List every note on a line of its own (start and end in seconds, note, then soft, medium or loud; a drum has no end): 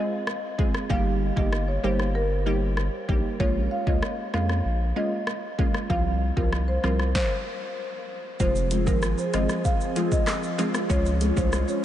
0.00 0.10 F4 medium
0.00 0.10 G#4 medium
0.27 cross-stick loud
0.58 0.72 G#3 medium
0.58 0.72 C4 medium
0.58 0.73 F4 medium
0.58 0.73 G#4 medium
0.58 kick medium
0.75 cross-stick medium
0.90 1.31 G1 loud
0.90 1.33 G3 loud
0.90 1.33 A#3 medium
0.90 1.33 D#4 medium
0.90 1.33 G4 loud
0.90 1.00 F5 medium
0.90 kick loud
1.36 1.78 G1 loud
1.36 1.50 G3 medium
1.36 1.51 A#3 medium
1.36 1.51 D#4 medium
1.36 1.51 G4 medium
1.36 1.47 D#5 medium
1.36 kick medium
1.53 cross-stick loud
1.68 1.78 C#5 medium
1.84 2.89 G1 medium
1.84 1.97 G3 medium
1.84 1.98 A#3 medium
1.84 1.98 D#4 medium
1.84 1.98 G4 medium
1.84 1.94 C5 medium
2.00 cross-stick medium
2.15 2.59 A#4 loud
2.46 2.60 G3 medium
2.46 2.60 A#3 medium
2.46 2.60 D#4 medium
2.46 2.60 G4 medium
2.77 cross-stick medium
3.08 3.23 A#1 medium
3.08 3.22 G3 medium
3.08 3.23 A#3 medium
3.08 3.23 D#4 medium
3.08 3.23 G4 medium
3.08 kick medium
3.40 3.68 A#1 loud
3.40 3.83 G#3 medium
3.40 3.83 A#3 medium
3.40 3.83 C#4 medium
3.40 3.83 F4 loud
3.40 3.50 C#5 medium
3.40 kick medium
3.71 3.81 F5 medium
3.87 4.01 C#2 medium
3.87 4.01 G#3 medium
3.87 4.01 A#3 medium
3.87 4.01 C#4 medium
3.87 4.01 F4 medium
3.87 3.97 D#5 medium
3.87 kick medium
4.03 cross-stick loud
4.34 4.61 F2 medium
4.34 4.47 G#3 medium
4.34 4.48 A#3 medium
4.34 4.48 C#4 medium
4.34 4.48 F4 medium
4.34 4.44 F5 medium
4.34 cross-stick medium
4.49 cross-stick medium
4.65 4.93 A#1 loud
4.96 5.10 G#3 medium
4.96 5.10 A#3 medium
4.96 5.10 C#4 medium
4.96 5.10 F4 medium
4.96 5.06 D#5 medium
5.27 cross-stick loud
5.58 5.72 G#3 medium
5.58 5.73 A#3 medium
5.58 5.73 C#4 medium
5.58 5.73 F4 medium
5.58 kick medium
5.74 cross-stick medium
5.90 6.31 C2 loud
5.90 6.33 F3 medium
5.90 6.33 G3 medium
5.90 6.33 C4 medium
5.90 6.33 F4 loud
5.90 6.00 F5 medium
5.90 kick loud
6.37 6.78 C2 medium
6.37 6.51 F3 medium
6.37 6.51 G3 medium
6.37 6.51 C4 medium
6.37 6.51 F4 medium
6.37 6.47 A#4 medium
6.37 kick medium
6.53 cross-stick loud
6.68 6.78 C5 medium
6.83 7.13 C2 medium
6.83 6.97 F3 medium
6.83 6.98 G3 medium
6.83 6.98 C4 medium
6.83 6.98 F4 medium
6.83 6.94 A#4 medium
6.83 cross-stick medium
7.00 cross-stick medium
7.15 7.59 C5 loud
7.15 kick loud
7.15 snare medium
8.40 8.89 F1 loud
8.40 8.83 F3 loud
8.40 10.87 F3 medium
8.40 8.83 G#3 medium
8.40 10.87 C4 medium
8.40 8.83 C4 medium
8.40 8.83 F4 loud
8.40 10.88 G#4 medium
8.40 8.60 C5 loud
8.40 kick loud
8.40 shaker medium
8.56 shaker medium
8.71 8.92 G#3 medium
8.71 8.93 C4 medium
8.71 8.93 F4 medium
8.71 closed hi-hat medium
8.71 high bongo medium
8.71 shaker medium
8.87 9.15 G#1 medium
8.87 9.01 F3 medium
8.87 9.01 G#3 medium
8.87 9.01 C4 medium
8.87 9.01 F4 medium
8.87 8.97 A#4 medium
8.87 kick medium
8.87 shaker medium
9.02 cross-stick loud
9.02 shaker medium
9.18 9.28 C5 medium
9.18 shaker medium
9.33 9.48 G#1 loud
9.33 9.47 F3 medium
9.33 9.55 G#3 medium
9.33 9.47 G#3 medium
9.33 9.48 C4 medium
9.33 9.55 C4 medium
9.33 9.48 F4 medium
9.33 9.55 F4 medium
9.33 9.44 D#5 medium
9.33 cross-stick medium
9.33 closed hi-hat medium
9.33 high bongo medium
9.33 shaker soft
9.49 cross-stick medium
9.49 high bongo medium
9.49 shaker medium
9.65 9.75 F5 medium
9.65 kick loud
9.65 shaker medium
9.81 shaker soft
9.96 10.10 F3 medium
9.96 10.17 G#3 medium
9.96 10.10 G#3 medium
9.96 10.10 C4 medium
9.96 10.18 C4 medium
9.96 10.10 F4 medium
9.96 10.18 F4 loud
9.96 closed hi-hat medium
9.96 high bongo medium
9.96 shaker medium
10.12 10.22 D#5 medium
10.12 kick loud
10.12 shaker medium
10.27 cross-stick loud
10.27 clap loud
10.27 high bongo medium
10.27 shaker medium
10.43 shaker medium
10.58 10.72 F3 medium
10.58 10.74 G#3 medium
10.58 10.72 G#3 medium
10.58 10.73 C4 medium
10.58 10.73 F4 medium
10.58 10.73 F4 loud
10.58 closed hi-hat medium
10.58 low bongo medium
10.58 shaker medium
10.74 10.91 G#3 medium
10.74 10.91 C4 medium
10.74 10.91 F4 medium
10.74 cross-stick loud
10.74 high bongo medium
10.74 shaker medium
10.90 11.31 C#2 loud
10.90 11.33 F3 loud
10.90 11.33 G#3 medium
10.90 11.85 G#3 medium
10.90 11.33 C#4 medium
10.90 11.85 C#4 medium
10.90 11.85 F4 medium
10.90 11.33 F4 loud
10.90 11.10 C#5 loud
10.90 kick loud
10.90 shaker medium
11.06 shaker medium
11.21 11.42 G#3 medium
11.21 11.43 C#4 medium
11.21 11.43 F4 medium
11.21 closed hi-hat medium
11.21 high bongo medium
11.21 shaker medium
11.36 11.65 C2 medium
11.36 11.50 F3 medium
11.36 11.51 G#3 medium
11.36 11.51 C#4 medium
11.36 11.51 F4 medium
11.36 11.47 C5 medium
11.36 kick medium
11.36 shaker medium
11.53 cross-stick loud
11.53 shaker medium
11.68 11.78 C#5 medium
11.68 shaker medium